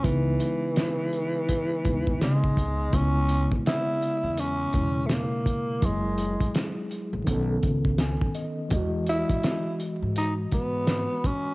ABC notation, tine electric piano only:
X:1
M:4/4
L:1/8
Q:"Swing 16ths" 1/4=83
K:C#m
V:1 name="Tine electric piano"
z8 | z8 | z6 g d | z8 |]
V:2 name="Tine electric piano"
[C,G,B,D]4- [C,G,B,D] [C,G,B,D]3 | [C,G,B,E]4- [C,G,B,E] [B,,C,G,E]3 | [F,G,EG]4 [D,B,CA]4 | [E,G,Fd]8 |]